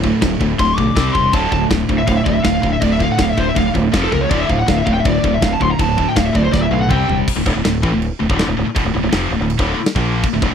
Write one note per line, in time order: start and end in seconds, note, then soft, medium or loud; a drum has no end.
0.00 0.10 D1 loud
0.00 0.95 D2 medium
0.00 0.20 D2 medium
0.00 0.95 A2 medium
0.00 0.20 A2 medium
0.00 0.96 D3 medium
0.00 kick medium
0.21 0.35 D1 medium
0.21 0.38 D2 medium
0.21 0.39 A2 medium
0.21 kick loud
0.21 snare loud
0.21 crash medium
0.40 0.53 D1 medium
0.40 0.57 D2 medium
0.40 0.57 A2 medium
0.40 kick medium
0.58 0.72 D1 medium
0.58 0.76 D2 medium
0.58 0.76 A2 medium
0.58 0.76 C6 loud
0.58 kick loud
0.58 crash medium
0.76 0.91 B1 loud
0.76 0.94 D2 medium
0.76 0.94 A2 medium
0.76 1.13 D6 loud
0.76 kick medium
0.95 1.09 C2 medium
0.95 1.13 C3 medium
0.95 1.14 G3 loud
0.95 1.14 C4 loud
0.95 kick loud
0.95 snare loud
0.95 crash medium
1.13 1.28 E1 medium
1.13 1.31 C3 medium
1.13 1.32 G3 medium
1.13 1.32 C6 loud
1.13 kick medium
1.33 1.46 D1 medium
1.33 1.50 D2 medium
1.33 1.51 A2 medium
1.33 1.51 D3 loud
1.33 1.50 A5 medium
1.33 kick loud
1.33 crash medium
1.51 1.65 D1 loud
1.51 1.69 D2 medium
1.51 1.69 A2 medium
1.51 1.63 A5 loud
1.51 kick medium
1.70 1.84 D1 medium
1.70 1.87 D2 medium
1.70 1.87 A2 medium
1.70 kick loud
1.70 snare loud
1.70 crash medium
1.89 2.02 D1 medium
1.89 2.05 D2 medium
1.89 2.06 A2 medium
1.89 kick loud
1.98 2.07 E5 medium
2.07 2.21 D1 loud
2.07 2.24 D2 medium
2.07 2.24 A2 medium
2.07 2.17 F5 loud
2.07 kick loud
2.07 crash medium
2.17 2.24 E5 loud
2.25 2.39 D1 loud
2.25 2.43 D2 medium
2.25 2.43 A2 medium
2.25 2.34 D5 medium
2.25 kick loud
2.34 2.43 E5 medium
2.44 2.58 D1 medium
2.44 2.61 D2 medium
2.44 2.61 A2 loud
2.44 2.70 F5 loud
2.44 kick loud
2.44 snare loud
2.44 crash medium
2.62 2.76 D1 medium
2.62 2.79 D2 medium
2.62 2.79 A2 medium
2.62 kick medium
2.73 2.82 E5 medium
2.81 3.08 D1 medium
2.81 2.98 D2 medium
2.81 2.98 A2 medium
2.81 3.93 D3 loud
2.81 2.91 D5 medium
2.81 kick loud
2.81 crash medium
2.92 3.01 E5 medium
2.99 3.16 D2 medium
2.99 3.16 A2 medium
2.99 3.11 F5 loud
2.99 kick medium
3.12 3.20 F#5 loud
3.17 3.32 D1 medium
3.17 3.35 D2 medium
3.17 3.35 A2 medium
3.17 3.30 F5 loud
3.17 kick loud
3.17 snare loud
3.17 crash medium
3.30 3.38 E5 medium
3.37 3.50 D1 loud
3.37 3.54 D2 medium
3.37 3.54 A2 medium
3.37 3.47 C5 medium
3.37 kick loud
3.49 3.57 E5 medium
3.55 3.69 D1 loud
3.55 3.72 D2 medium
3.55 3.72 A2 medium
3.55 3.68 F5 loud
3.55 kick loud
3.55 crash medium
3.74 3.88 D1 loud
3.74 3.91 D2 medium
3.74 3.91 A2 medium
3.74 kick medium
3.92 4.06 F1 medium
3.92 4.10 F2 loud
3.92 4.10 C3 loud
3.92 4.11 F3 loud
3.92 kick loud
3.92 snare loud
3.92 crash medium
4.03 4.12 A4 medium
4.11 4.25 C#2 medium
4.11 4.28 F2 medium
4.11 4.28 C3 medium
4.11 4.21 A#4 medium
4.11 kick medium
4.21 4.31 C#5 medium
4.29 4.43 D1 medium
4.29 4.47 D2 medium
4.29 4.48 A2 medium
4.29 4.48 D3 loud
4.29 4.40 D5 medium
4.29 kick loud
4.29 crash medium
4.41 4.50 E5 medium
4.48 4.62 D1 loud
4.48 4.65 D2 medium
4.48 4.65 A2 medium
4.48 4.58 F5 loud
4.48 kick loud
4.59 4.68 F#5 loud
4.66 4.81 D1 medium
4.66 4.84 D2 medium
4.66 4.84 A2 medium
4.66 4.77 F5 loud
4.66 kick loud
4.66 snare loud
4.66 crash medium
4.78 4.86 E5 medium
4.85 4.99 D1 loud
4.85 5.03 D2 medium
4.85 5.03 A2 loud
4.85 4.92 F5 loud
4.85 kick loud
4.94 5.00 G5 loud
5.00 5.05 E5 medium
5.05 5.18 D1 loud
5.05 5.21 D2 medium
5.05 5.22 A2 medium
5.05 5.31 D5 loud
5.05 kick loud
5.05 crash medium
5.24 5.36 D1 medium
5.24 5.40 D2 medium
5.24 5.40 A2 medium
5.24 kick loud
5.34 5.43 E5 medium
5.42 5.55 D1 medium
5.42 5.59 D2 medium
5.42 5.59 A2 loud
5.42 5.52 F5 loud
5.42 kick loud
5.42 snare loud
5.42 crash medium
5.53 5.62 A5 loud
5.60 5.74 D1 medium
5.60 5.77 D2 medium
5.60 5.77 A2 medium
5.60 5.70 C6 loud
5.60 kick medium
5.71 5.80 A#5 loud
5.79 6.05 D1 medium
5.79 5.96 D2 medium
5.79 5.96 A2 medium
5.79 6.90 D3 loud
5.79 6.06 A5 loud
5.79 kick loud
5.79 crash medium
5.97 6.14 D2 medium
5.97 6.14 A2 medium
5.97 kick medium
6.09 6.17 G5 loud
6.16 6.29 D1 medium
6.16 6.32 D2 medium
6.16 6.33 A2 medium
6.16 6.26 F5 medium
6.16 kick loud
6.16 snare loud
6.16 crash medium
6.26 6.35 E5 medium
6.33 6.48 D1 loud
6.33 6.50 D2 medium
6.33 6.50 A2 medium
6.33 6.44 D5 loud
6.33 kick loud
6.44 6.52 C5 medium
6.51 6.66 D1 loud
6.51 6.69 D2 medium
6.51 6.69 A2 medium
6.51 6.62 D5 medium
6.51 kick loud
6.51 snare medium
6.62 6.72 E5 loud
6.71 6.90 B1 loud
6.71 6.88 D2 medium
6.71 6.88 A2 medium
6.71 6.81 F5 loud
6.81 6.90 F#5 loud
6.89 7.03 C2 medium
6.89 7.06 C3 loud
6.89 7.06 G3 loud
6.89 7.07 C4 loud
6.89 7.16 G5 loud
6.89 kick loud
6.89 mid tom loud
7.07 7.21 E1 medium
7.07 7.25 C3 medium
7.07 7.25 G3 medium
7.07 floor tom medium
7.28 kick loud
7.28 crash loud
7.28 crash medium
7.36 7.45 D1 medium
7.36 7.44 D2 medium
7.36 7.45 A2 medium
7.45 7.55 D1 loud
7.45 7.54 D2 loud
7.45 7.55 A2 loud
7.45 kick loud
7.56 7.65 D1 medium
7.56 7.63 D2 medium
7.56 7.63 A2 medium
7.64 7.82 D1 medium
7.64 7.79 D2 medium
7.64 7.79 A2 medium
7.64 snare loud
7.64 crash medium
7.82 7.92 A1 loud
7.82 7.91 A2 loud
7.82 7.92 E3 loud
7.82 kick loud
7.92 8.11 D1 medium
7.92 8.07 D2 medium
7.92 8.07 A2 medium
8.02 crash medium
8.20 8.29 D1 medium
8.20 8.28 D2 medium
8.20 8.28 A2 medium
8.29 8.47 D1 loud
8.29 8.47 D2 medium
8.29 8.46 A2 loud
8.29 8.48 D3 loud
8.29 kick loud
8.39 snare loud
8.39 crash medium
8.48 8.57 D1 medium
8.48 8.55 D2 medium
8.48 8.56 A2 medium
8.56 8.66 D1 medium
8.56 8.65 D2 medium
8.56 8.67 A2 medium
8.66 muted distorted electric guitar stroke medium
8.66 muted fingered electric bass stroke soft
8.75 8.85 E1 medium
8.75 8.84 E2 medium
8.75 8.84 B2 loud
8.75 kick loud
8.75 crash medium
8.85 8.94 D1 medium
8.85 8.93 D2 medium
8.85 8.93 A2 medium
8.94 9.02 D1 medium
8.94 9.02 D2 medium
8.94 9.02 A2 medium
9.03 9.12 D1 medium
9.03 9.12 D2 medium
9.03 9.13 A2 medium
9.12 9.30 F1 medium
9.12 9.31 F2 loud
9.12 9.31 C3 loud
9.12 9.31 F3 loud
9.12 snare loud
9.12 crash medium
9.31 9.39 D1 medium
9.31 9.40 D2 medium
9.31 9.41 A2 medium
9.40 9.58 D1 medium
9.40 9.56 D2 medium
9.40 9.56 A2 medium
9.50 crash medium
9.59 9.76 D1 loud
9.59 9.77 D2 medium
9.59 9.78 A2 loud
9.59 9.78 D3 medium
9.59 kick loud
9.78 muted distorted electric guitar stroke medium
9.78 muted fingered electric bass stroke soft
9.86 snare loud
9.86 crash medium
9.95 10.22 A#1 loud
9.95 10.23 A#2 medium
9.95 10.23 F3 loud
9.95 10.24 A#3 loud
9.95 kick loud
10.23 kick loud
10.23 crash medium
10.33 10.41 D1 medium
10.33 10.40 D2 medium
10.33 10.41 A2 medium
10.42 10.51 D1 loud
10.42 10.50 D2 medium
10.42 10.51 A2 loud
10.42 kick loud
10.50 10.54 D1 medium
10.50 10.54 D2 medium
10.50 10.54 A2 medium